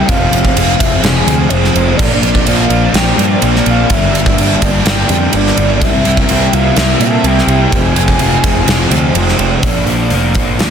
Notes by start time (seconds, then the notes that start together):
Already playing: C4
0.08 F1 F2 C3 F3 G#3 C4 G#4 F5, kick, ride
0.32 F1 F3 G#3 C4, ride
0.45 kick
0.56 F1 F2 C3 F3 G#3, ride
0.60 C4
0.79 F1 G#3 C4 E5, kick, ride
0.83 F3
1.02 F1 F2 C3 F3 G#3 C4 G#5, snare, ride
1.25 D2 F3 G#3 C4, ride
1.49 F1 F2 C3 F3 G#3 C5, ride
1.53 C4
1.64 snare
1.74 F1 G#3 C4, ride
1.78 F3
1.97 A#1 A#2 F3 A#3 C4 A#4 D5, kick, crash
2.02 D4
2.21 A#1 F3 A#3 D4, ride
2.35 kick
2.45 A#1 A#2 F3 A#3 D4 F5, ride
2.69 A#1 F3 A#3 D4, ride
2.93 A#1 A#2 F3 A#3 G5, snare, ride
2.97 D4
3.17 G2 F3 A#3 D4, ride
3.41 A#1 A#2 F3 A#3 D4, ride
3.56 snare
3.65 A#1 F3 A#3 D4, ride
3.70 F5
3.89 G1 G2 D3 G3 A#3 D4 E5 G5, kick, ride
4.13 G1 A#3 D4, ride
4.17 G3
4.26 kick
4.35 G1 G2 D3 G3 A#3 D4, ride
4.59 G1 A#3 D4, kick, ride
4.63 G3 D5
4.84 G1 G2 D3 G3 A#3 D4, snare, ride
4.89 G5
5.09 F2 G3 A#3 D4, ride
5.33 G1 G2 D3 G3 A#3 D5, ride
5.37 D4
5.47 snare
5.57 G1 G3 A#3 D4, ride
5.80 C2 C3 G3 A#3 C4 E4 A#4 E5, kick, ride
6.04 C2 G3 A#3 E4, ride
6.17 kick
6.28 C2 C3 G3 A#3 C4 E4 G5, ride
6.53 C2 G3 A#3 E4 F5, ride
6.76 C2 C3 G3 A#3 C4 E4 E5, snare, ride
6.99 A#2 A#3 E4 A5, ride
7.04 G3
7.24 C2 C3 G3 A#3 E4 G5, ride
7.28 C4
7.38 snare
7.47 C2 A#3 E4, ride
7.52 G3
7.71 F1 F2 C3 F3 G#3 C4 G#4 F5 G#5, kick, ride
7.95 F1 F3 G#3 C4, ride
8.08 kick
8.19 F1 F2 C3 F3 G#3 C4, ride
8.43 F1 F3 G#3 C4, kick, ride
8.66 F1 F2 C3 F3 G#3 C4, snare, ride
8.90 D2 F3 G#3 C4, ride
9.14 F1 F2 C3 F3 G#3 C4, ride
9.28 snare
9.38 F1 F3 G#3 C4, ride
9.63 A#1 A#2 D3 F3 A#3 D4, kick, open hi-hat
9.86 A#1 F3 A#3, open hi-hat
10.10 F1 A#2 D3 F3 A#3 D4, open hi-hat
10.34 A#1 F3 A#3, kick, open hi-hat
10.59 D2 A#2 D3 F3 A#3, snare, open hi-hat
10.63 D4